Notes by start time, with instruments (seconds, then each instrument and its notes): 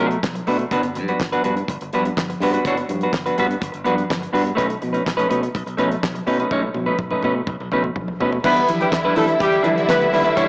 Already playing: clean electric guitar A3
0.00 fingered electric bass B2, high conga
0.10 muted clean electric guitar stroke, closed hi-hat
0.23 fingered electric bass B1, kick, snare, clap, high conga
0.35 muted clean electric guitar stroke, closed hi-hat, muted conga
0.47 fingered electric bass B2, clean electric guitar A3 D4 F#4 B4, open hi-hat, low conga
0.59 muted clean electric guitar stroke, closed hi-hat
0.71 fingered electric bass G1, clean electric guitar B3 D4 F#4 B4, kick, closed hi-hat, low conga
0.83 muted clean electric guitar stroke, closed hi-hat
0.95 fingered electric bass G2, muted clean electric guitar stroke, closed hi-hat, high conga
1.08 clean electric guitar B3 D4 F#4 B4, closed hi-hat
1.20 fingered electric bass G1, muted clean electric guitar stroke, kick, snare, clap, muted conga
1.32 clean electric guitar B3 D4 F#4 B4, closed hi-hat, muted conga, high conga
1.43 fingered electric bass G2, clean electric guitar B3 F#4 B4, closed hi-hat, low conga
1.57 muted clean electric guitar stroke, closed hi-hat
1.68 fingered electric bass G1, muted clean electric guitar stroke, kick, closed hi-hat, muted conga
1.81 fingered electric bass G1, muted clean electric guitar stroke, closed hi-hat
1.93 fingered electric bass G2, clean electric guitar B3 D4 F#4 B4, closed hi-hat, high conga
2.05 muted clean electric guitar stroke, closed hi-hat
2.17 fingered electric bass G1, muted clean electric guitar stroke, kick, snare, clap, muted conga, high conga
2.30 muted clean electric guitar stroke, closed hi-hat
2.40 fingered electric bass G2, clean electric guitar B3 D4 F#4 B4, open hi-hat, low conga
2.53 clean electric guitar B3 D4 F#4 B4, closed hi-hat
2.65 fingered electric bass G1, clean electric guitar B3 D4 F#4 C#5, kick, closed hi-hat, muted conga, low conga
2.77 muted clean electric guitar stroke, closed hi-hat
2.89 fingered electric bass G2, muted clean electric guitar stroke, closed hi-hat, high conga
3.01 clean electric guitar B3 D4 F#4 B4, closed hi-hat
3.13 fingered electric bass G1, kick, snare, clap
3.26 clean electric guitar B3 D4 F#4 B4, closed hi-hat, muted conga, high conga
3.38 fingered electric bass G2, clean electric guitar B3 D4 F#4 B4, closed hi-hat, low conga
3.49 muted clean electric guitar stroke, closed hi-hat
3.60 fingered electric bass G1, muted clean electric guitar stroke, kick, closed hi-hat, muted conga
3.72 fingered electric bass G1, muted clean electric guitar stroke, closed hi-hat
3.84 fingered electric bass G2, clean electric guitar B3 D4 F#4 B4, closed hi-hat, high conga
3.97 muted clean electric guitar stroke, closed hi-hat
4.10 fingered electric bass G1, kick, snare, clap, muted conga, high conga
4.21 muted clean electric guitar stroke, closed hi-hat, muted conga
4.33 fingered electric bass G2, clean electric guitar B3 D4 F#4 B4, open hi-hat, low conga
4.45 muted clean electric guitar stroke, closed hi-hat
4.55 fingered electric bass B1, clean electric guitar A3 C#4 D#4 B4, kick, closed hi-hat, muted conga, low conga
4.69 muted clean electric guitar stroke, closed hi-hat
4.81 fingered electric bass B2, muted clean electric guitar stroke, closed hi-hat, high conga
4.93 clean electric guitar A3 C#4 D#4 B4, closed hi-hat
5.04 fingered electric bass B1, muted clean electric guitar stroke, kick, snare, clap
5.17 clean electric guitar A3 C#4 D#4 B4, closed hi-hat, muted conga, high conga
5.29 fingered electric bass B2, clean electric guitar A3 C#4 D#4 B4, closed hi-hat, low conga
5.43 muted clean electric guitar stroke, closed hi-hat
5.55 fingered electric bass B1, muted clean electric guitar stroke, kick, closed hi-hat
5.66 fingered electric bass B1, muted clean electric guitar stroke, closed hi-hat
5.77 fingered electric bass B2, clean electric guitar A3 C#4 D#4 B4, closed hi-hat, high conga
5.91 muted clean electric guitar stroke, closed hi-hat
6.02 fingered electric bass B1, muted clean electric guitar stroke, kick, snare, clap, muted conga, high conga
6.15 muted clean electric guitar stroke, closed hi-hat, muted conga
6.26 fingered electric bass B2, clean electric guitar A3 C#4 D#4 B4, open hi-hat, low conga
6.40 clean electric guitar A3 C#4 D#4 B4, closed hi-hat
6.51 fingered electric bass B1, clean electric guitar A3 C#4 D#4 C#5, kick, high tom, muted conga, low conga
6.63 muted clean electric guitar stroke, high tom, muted conga
6.75 fingered electric bass B2, muted clean electric guitar stroke, high tom, high conga
6.86 clean electric guitar A3 C#4 D#4 B4, high tom
6.99 fingered electric bass B1, muted clean electric guitar stroke, kick, mid tom
7.11 clean electric guitar A3 C#4 D#4 B4, mid tom, high conga
7.23 fingered electric bass B2, clean electric guitar A3 C#4 D#4 B4, mid tom, low conga
7.36 muted clean electric guitar stroke
7.47 fingered electric bass B1, muted clean electric guitar stroke, kick, mid tom, muted conga
7.60 fingered electric bass B1, muted clean electric guitar stroke, muted conga
7.71 fingered electric bass B2, clean electric guitar A3 C#4 D#4 B4, mid tom, high conga
7.84 muted clean electric guitar stroke, mid tom
7.96 fingered electric bass B1, kick, floor tom, muted conga, high conga
8.08 muted clean electric guitar stroke, floor tom
8.20 fingered electric bass B2, clean electric guitar A3 C#4 D#4 B4, floor tom, low conga
8.33 muted clean electric guitar stroke, floor tom
8.44 fingered electric bass E2, string section D3 G3 E4, clean electric guitar G3 D4 E4 B4, horn section B3 B4, violin section E4 E5, kick, crash, muted conga, low conga
8.57 muted clean electric guitar stroke, closed hi-hat, muted conga
8.69 fingered electric bass E3, muted clean electric guitar stroke, closed hi-hat, high conga
8.80 horn section G3 G4, clean electric guitar G3 D4 E4 B4, closed hi-hat
8.92 fingered electric bass E2, muted clean electric guitar stroke, kick, snare, clap, muted conga
9.05 clean electric guitar G3 D4 E4 B4, muted conga, high conga
9.16 fingered electric bass E3, clean electric guitar G3 D4 E4 B4, horn section A3 A4, open hi-hat, low conga
9.28 muted clean electric guitar stroke, closed hi-hat
9.40 fingered electric bass E2, horn section G3 G4, muted clean electric guitar stroke, kick, closed hi-hat
9.52 muted clean electric guitar stroke, closed hi-hat
9.62 fingered electric bass E3, clean electric guitar G3 D4 E4 B4, closed hi-hat, high conga
9.76 muted clean electric guitar stroke, closed hi-hat
9.88 fingered electric bass D2, horn section B3 B4, muted clean electric guitar stroke, kick, snare, clap, muted conga, high conga
10.00 muted clean electric guitar stroke, closed hi-hat
10.12 fingered electric bass D#2, clean electric guitar G3 D4 E4 B4, snare, open hi-hat, low conga
10.24 clean electric guitar G3 D4 E4 B4, closed hi-hat
10.36 fingered electric bass E2, clean electric guitar G3 D4 E4 C#5, kick, closed hi-hat, low conga